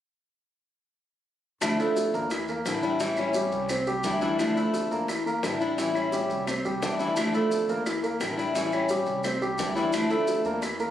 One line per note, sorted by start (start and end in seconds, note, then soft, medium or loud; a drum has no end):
1.61 2.11 D2 medium
1.61 1.78 D3 medium
1.61 1.79 F3 medium
1.61 1.78 A3 medium
1.61 1.78 D4 medium
1.61 1.77 E4 medium
1.61 high bongo medium
1.61 claves medium
1.61 maracas medium
1.78 2.30 F3 medium
1.78 2.30 A3 medium
1.78 2.08 A3 medium
1.78 2.30 D4 medium
1.78 2.31 E4 medium
1.78 2.08 A4 medium
1.78 maracas soft
1.97 high bongo medium
1.97 maracas medium
2.14 2.62 E2 loud
2.14 2.28 A#3 medium
2.14 2.29 A#4 medium
2.14 maracas soft
2.30 2.46 E3 medium
2.30 2.46 E4 medium
2.30 muted steel-string acoustic guitar stroke medium
2.30 high bongo medium
2.30 claves medium
2.30 maracas medium
2.48 2.63 A#3 medium
2.48 2.63 A#4 medium
2.48 maracas soft
2.65 3.47 A1 medium
2.65 2.83 D3 medium
2.65 2.95 E3 medium
2.65 2.83 G3 medium
2.65 2.82 D4 medium
2.65 2.95 E4 medium
2.65 2.81 E4 medium
2.65 high bongo medium
2.65 low bongo medium
2.65 claves medium
2.65 maracas medium
2.82 3.00 G3 medium
2.82 3.00 D4 medium
2.82 3.00 E4 medium
2.82 maracas soft
3.00 3.17 E3 medium
3.00 3.29 E3 medium
3.00 3.17 G3 medium
3.00 3.17 C#4 medium
3.00 3.29 E4 medium
3.00 3.17 E4 medium
3.00 high bongo medium
3.00 maracas medium
3.16 3.70 G3 medium
3.16 3.70 C#4 medium
3.16 3.71 E4 medium
3.16 high bongo soft
3.16 claves medium
3.16 maracas soft
3.34 3.64 G3 medium
3.34 3.64 G4 medium
3.34 high bongo medium
3.34 maracas medium
3.52 4.01 C2 loud
3.52 high bongo soft
3.52 maracas soft
3.69 3.84 C4 medium
3.69 3.85 C5 medium
3.69 muted steel-string acoustic guitar stroke medium
3.69 high bongo medium
3.69 claves medium
3.69 maracas medium
3.87 4.16 G3 medium
3.87 4.16 G4 medium
3.87 maracas soft
4.03 4.85 D2 medium
4.03 4.21 E3 medium
4.03 4.21 G3 medium
4.03 4.20 D4 medium
4.03 4.20 E4 medium
4.03 high bongo medium
4.03 low bongo medium
4.03 maracas medium
4.21 4.51 E3 medium
4.21 4.39 E3 medium
4.21 4.39 G3 medium
4.21 4.39 D4 medium
4.21 4.38 E4 medium
4.21 4.51 E4 medium
4.21 high bongo soft
4.21 maracas soft
4.39 4.56 D3 medium
4.39 4.56 F3 medium
4.39 4.56 A3 medium
4.39 4.55 D4 medium
4.39 4.54 E4 medium
4.39 high bongo medium
4.39 claves medium
4.39 maracas medium
4.56 5.08 F3 medium
4.56 4.85 A3 medium
4.56 5.08 A3 medium
4.56 5.08 D4 medium
4.56 5.09 E4 medium
4.56 4.85 A4 medium
4.56 maracas soft
4.74 high bongo medium
4.74 maracas medium
4.91 5.40 E2 medium
4.91 5.06 A#3 medium
4.91 5.06 A#4 medium
4.91 maracas soft
5.08 5.23 E3 medium
5.08 5.23 E4 medium
5.08 muted steel-string acoustic guitar stroke medium
5.08 high bongo medium
5.08 claves medium
5.08 maracas medium
5.26 5.40 A#3 medium
5.26 5.40 A#4 medium
5.26 maracas soft
5.43 6.24 A1 medium
5.43 5.60 D3 medium
5.43 5.72 E3 medium
5.43 5.60 G3 medium
5.43 5.60 D4 medium
5.43 5.72 E4 medium
5.43 5.59 E4 medium
5.43 high bongo medium
5.43 low bongo medium
5.43 claves medium
5.43 maracas medium
5.61 5.77 G3 medium
5.61 5.78 D4 medium
5.61 5.77 E4 medium
5.61 maracas soft
5.78 5.95 E3 medium
5.78 6.07 E3 medium
5.78 5.95 G3 medium
5.78 5.94 C#4 medium
5.78 6.07 E4 medium
5.78 5.93 E4 medium
5.78 high bongo medium
5.78 maracas medium
5.94 6.46 G3 medium
5.94 6.47 C#4 medium
5.94 6.48 E4 medium
5.94 high bongo soft
5.94 claves medium
5.94 maracas soft
6.12 6.41 G3 medium
6.12 6.42 G4 medium
6.12 high bongo medium
6.12 maracas medium
6.30 6.62 C2 medium
6.30 high bongo soft
6.30 maracas soft
6.47 6.62 C4 medium
6.47 6.62 C5 medium
6.47 muted steel-string acoustic guitar stroke medium
6.47 high bongo medium
6.47 claves medium
6.47 maracas medium
6.64 6.81 C2 medium
6.64 6.93 G3 medium
6.64 6.93 G4 medium
6.64 maracas soft
6.81 7.63 D2 medium
6.81 6.98 E3 medium
6.81 6.99 G3 medium
6.81 6.99 D4 medium
6.81 6.98 E4 medium
6.81 high bongo medium
6.81 low bongo medium
6.81 maracas medium
6.99 7.28 E3 medium
6.99 7.16 E3 medium
6.99 7.16 G3 medium
6.99 7.16 D4 medium
6.99 7.16 E4 medium
6.99 7.28 E4 medium
6.99 high bongo soft
6.99 maracas soft
7.16 7.33 D3 medium
7.16 7.33 F3 medium
7.16 7.34 A3 medium
7.16 7.34 D4 medium
7.16 7.33 E4 medium
7.16 high bongo medium
7.16 claves medium
7.16 maracas medium
7.34 7.86 F3 medium
7.34 7.63 A3 medium
7.34 7.86 A3 medium
7.34 7.86 D4 medium
7.34 7.87 E4 medium
7.34 7.63 A4 medium
7.34 maracas soft
7.51 high bongo medium
7.51 maracas medium
7.68 8.17 E2 medium
7.68 7.83 A#3 medium
7.68 7.83 A#4 medium
7.68 maracas soft
7.86 8.00 E3 medium
7.86 8.01 E4 medium
7.86 muted steel-string acoustic guitar stroke medium
7.86 high bongo medium
7.86 claves medium
7.86 maracas medium
8.03 8.18 A#3 medium
8.03 8.18 A#4 medium
8.03 maracas soft
8.20 9.01 A1 medium
8.20 8.37 D3 medium
8.20 8.49 E3 medium
8.20 8.37 G3 soft
8.20 8.37 D4 medium
8.20 8.49 E4 medium
8.20 8.36 E4 medium
8.20 high bongo medium
8.20 low bongo medium
8.20 claves medium
8.20 maracas medium
8.37 8.54 G3 medium
8.37 8.55 D4 medium
8.37 8.54 E4 medium
8.37 maracas soft
8.54 8.72 E3 medium
8.54 8.84 E3 medium
8.54 8.72 G3 medium
8.54 8.72 C#4 medium
8.54 8.84 E4 medium
8.54 8.71 E4 medium
8.54 high bongo medium
8.54 maracas medium
8.72 9.24 G3 medium
8.72 9.24 C#4 medium
8.72 9.25 E4 medium
8.72 high bongo soft
8.72 claves medium
8.72 maracas soft
8.89 9.19 G3 medium
8.89 9.19 G4 medium
8.89 high bongo medium
8.89 maracas medium
9.06 9.55 C2 medium
9.06 high bongo soft
9.06 maracas soft
9.24 9.39 C4 medium
9.24 9.39 C5 medium
9.24 muted steel-string acoustic guitar stroke medium
9.24 high bongo medium
9.24 claves medium
9.24 maracas medium
9.41 9.70 G3 medium
9.41 9.70 G4 medium
9.41 maracas soft
9.58 10.40 D2 medium
9.58 9.75 E3 medium
9.58 9.75 G3 medium
9.58 9.75 D4 medium
9.58 9.74 E4 medium
9.58 high bongo medium
9.58 low bongo medium
9.58 maracas medium
9.75 10.05 E3 medium
9.75 9.93 E3 medium
9.75 9.93 G3 medium
9.75 9.93 D4 medium
9.75 9.92 E4 medium
9.75 10.05 E4 medium
9.75 high bongo soft
9.75 maracas soft
9.93 10.10 D3 medium
9.93 10.10 F3 medium
9.93 10.10 A3 medium
9.93 10.09 D4 medium
9.93 10.08 E4 medium
9.93 high bongo medium
9.93 claves medium
9.93 maracas medium
10.10 10.61 F3 medium
10.10 10.39 A3 medium
10.10 10.62 A3 medium
10.10 10.61 D4 medium
10.10 10.62 E4 medium
10.10 10.39 A4 medium
10.10 maracas soft
10.27 high bongo medium
10.27 maracas medium
10.45 10.90 E2 medium
10.45 10.60 A#3 medium
10.45 10.60 A#4 medium
10.45 maracas soft
10.62 10.77 E3 medium
10.62 10.77 E4 medium
10.62 muted steel-string acoustic guitar stroke medium
10.62 high bongo medium
10.62 claves medium
10.62 maracas medium
10.79 10.90 A#3 medium
10.79 10.90 A#4 medium
10.79 maracas soft